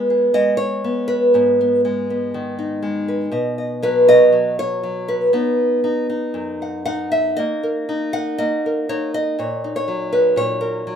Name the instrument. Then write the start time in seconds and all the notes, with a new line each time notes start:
nylon-string guitar
Already playing: G#3 B3 B4
0.10 G#4
0.34 G#3 D#5
0.57 C#5
0.84 B3
1.08 B4
1.34 G#2 B3
1.61 B3
1.85 G#3
2.10 B3
2.34 D#3
2.59 D#4
2.82 G#3
3.08 B4
3.31 B2 D#5
3.58 D#5
3.82 F#3 B4
4.08 D#5
4.32 F#3
4.59 C#5
4.83 F#3
5.08 B4
5.33 B3 D#4
5.84 D#4
6.09 D#4
6.34 F#2
6.62 F#5
6.86 D#4 F#5
7.12 E5
7.37 A#3 D#5
7.63 A#4
7.89 D#4
8.13 F#5
8.38 A#3 D#5
8.66 A#4
8.89 D#4 C#5
9.14 D#5
9.39 A#2 C#5
9.64 D#4
9.76 C#5
9.88 F#3
10.13 B4
10.36 A#2 C#5
10.61 A#4
10.87 F#3